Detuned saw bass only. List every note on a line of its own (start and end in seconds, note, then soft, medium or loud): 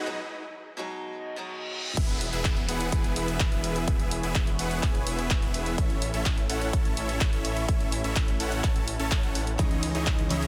1.97 2.31 E1 loud
2.33 2.66 E1 loud
2.69 2.90 E1 loud
2.92 3.14 E1 medium
3.16 3.50 E1 medium
3.52 3.85 E1 loud
3.88 4.21 E1 loud
4.23 4.57 E1 loud
4.59 4.81 E1 loud
4.83 5.04 E1 medium
5.07 5.40 E1 loud
5.42 5.76 E1 loud
5.78 6.11 A1 medium
6.14 6.47 A1 loud
6.50 6.71 A1 loud
6.73 6.95 A1 medium
6.97 7.30 A1 medium
7.33 7.66 A1 loud
7.69 8.02 A1 medium
8.04 8.38 A1 medium
8.40 8.61 A1 loud
8.64 8.97 A1 medium
8.99 9.21 A1 loud
9.23 9.57 A1 loud
9.59 9.92 C#2 loud
9.95 10.28 C#2 loud
10.31 10.47 C#2 loud